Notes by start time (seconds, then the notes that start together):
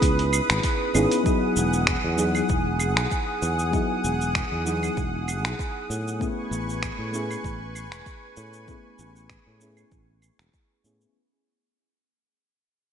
Already playing: B3 C#4 D#4 E4 G#4 B4 D#6
0.02 C#2, kick, closed hi-hat, cabasa
0.19 closed hi-hat
0.33 cabasa, claves
0.50 G#1, finger snap, closed hi-hat, cabasa
0.63 kick, closed hi-hat, cabasa
0.94 G#1 B3 C#4 D#4 E4 G#4, cabasa, claves
1.12 closed hi-hat, cabasa
1.24 F#3 B3 D#4 E4 F#5, kick, cabasa
1.28 G#4 D#6
1.56 E1, cabasa
1.73 cabasa
1.87 finger snap, kick, cabasa
2.04 E2
2.16 F#3 B3 D#4 E4 G#4, cabasa
2.35 cabasa, claves
2.49 E1, kick, cabasa
2.80 cabasa, claves
2.97 B1, finger snap, cabasa
3.11 kick, cabasa
3.42 E2, cabasa
3.59 cabasa
3.71 F#3 B3 D#4 E4, kick, cabasa
3.76 G#4
4.04 E1, cabasa
4.21 cabasa
4.35 finger snap, kick, cabasa
4.52 E2
4.64 F#3 B3 D#4 E4 G#4, cabasa
4.83 cabasa, claves
4.97 E1, kick, cabasa
5.28 cabasa, claves
5.44 B1, finger snap, cabasa
5.59 kick, cabasa
5.90 A2, cabasa
6.08 cabasa
6.20 A3 B3 C#4 E4 G#4 B4 G#5 C#6, kick, cabasa
6.51 A1, cabasa
6.69 cabasa
6.83 finger snap, kick, cabasa
6.99 A2
7.12 A3 B3 C#4 E4 G#4, cabasa
7.31 cabasa, claves
7.44 A1, kick, cabasa
7.75 cabasa, claves
7.92 E1, finger snap, cabasa
8.06 kick, cabasa
8.37 A2, cabasa
8.53 cabasa
8.67 A3 B3 C#4 E4 G#4, kick, cabasa
8.99 A1, cabasa
9.16 cabasa
9.30 finger snap, kick, cabasa
9.47 A2
9.59 A3 B3 C#4 E4 G#4, cabasa
9.77 cabasa, claves
9.91 A1, kick, cabasa
10.22 cabasa, claves
10.39 E1, finger snap, cabasa
10.54 kick, cabasa
10.84 A2 A3 B3 C#4 E4 G#4, cabasa
11.01 cabasa